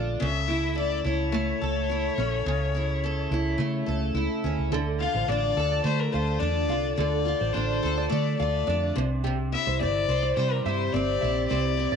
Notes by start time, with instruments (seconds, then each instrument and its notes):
Already playing: fingered electric bass A#1, steel-string acoustic guitar D3 A3 D4 F4 A4
0.20 fingered electric bass C#2, steel-string acoustic guitar C#3, violin E5
0.48 steel-string acoustic guitar E4
0.75 steel-string acoustic guitar A4, violin D5
1.04 fingered electric bass C#2, steel-string acoustic guitar E4, violin C#5
1.32 steel-string acoustic guitar A3
1.61 fingered electric bass C#2, steel-string acoustic guitar A4
1.90 steel-string acoustic guitar E4
2.18 fingered electric bass A#1, steel-string acoustic guitar C#4
2.46 fingered electric bass C#2, steel-string acoustic guitar C#3
2.75 steel-string acoustic guitar E4
3.04 steel-string acoustic guitar A4
3.31 fingered electric bass C#2, steel-string acoustic guitar E4
3.58 fingered electric bass C#3, steel-string acoustic guitar A3
3.86 fingered electric bass C#2, steel-string acoustic guitar A4
4.14 fingered electric bass C#2, steel-string acoustic guitar E4
4.44 fingered electric bass D2, steel-string acoustic guitar C#4
4.58 fingered electric bass C#2
4.71 fingered electric bass D2, steel-string acoustic guitar D3, nylon-string guitar A4
5.00 steel-string acoustic guitar F4, violin F5
5.14 fingered electric bass A1, nylon-string guitar C5
5.28 fingered electric bass A1, steel-string acoustic guitar D4, violin D5, nylon-string guitar D5
5.56 fingered electric bass D2, steel-string acoustic guitar A4
5.72 nylon-string guitar D5
5.84 fingered electric bass D3, steel-string acoustic guitar A3, violin C5
5.99 violin A#4
6.12 fingered electric bass D2, steel-string acoustic guitar F4, violin C5, nylon-string guitar F5
6.39 fingered electric bass E2, steel-string acoustic guitar D4, violin D5
6.69 fingered electric bass C2, steel-string acoustic guitar F4, nylon-string guitar F5
6.95 fingered electric bass D2, steel-string acoustic guitar D3, nylon-string guitar A4, violin D5
7.25 steel-string acoustic guitar F4
7.41 fingered electric bass A1, nylon-string guitar C5
7.53 fingered electric bass A1, steel-string acoustic guitar D4, violin C5, nylon-string guitar D5
7.83 fingered electric bass D2, steel-string acoustic guitar A4
7.98 nylon-string guitar D5
8.10 fingered electric bass D3, steel-string acoustic guitar A3, violin D5
8.38 fingered electric bass D2, steel-string acoustic guitar F4, violin D5, nylon-string guitar F5
8.67 fingered electric bass F2, steel-string acoustic guitar D4, nylon-string guitar D5
8.96 fingered electric bass C2, steel-string acoustic guitar C3, nylon-string guitar C5
9.24 steel-string acoustic guitar C3, nylon-string guitar G4
9.52 steel-string acoustic guitar E4, violin E5
9.67 fingered electric bass C2, nylon-string guitar C5
9.80 fingered electric bass G1, steel-string acoustic guitar C4, nylon-string guitar D5, violin D5
10.08 fingered electric bass C2, steel-string acoustic guitar C5
10.23 nylon-string guitar D5
10.37 fingered electric bass C3, steel-string acoustic guitar G3, violin C5
10.51 violin A#4
10.65 fingered electric bass G2, steel-string acoustic guitar E4, violin C5, nylon-string guitar E5
10.93 fingered electric bass G1, steel-string acoustic guitar C4, violin D5
11.21 fingered electric bass A#1, steel-string acoustic guitar E4, nylon-string guitar E5
11.48 fingered electric bass C2, steel-string acoustic guitar C3, nylon-string guitar C5, violin D5
11.77 steel-string acoustic guitar E4
11.92 fingered electric bass G1, nylon-string guitar D5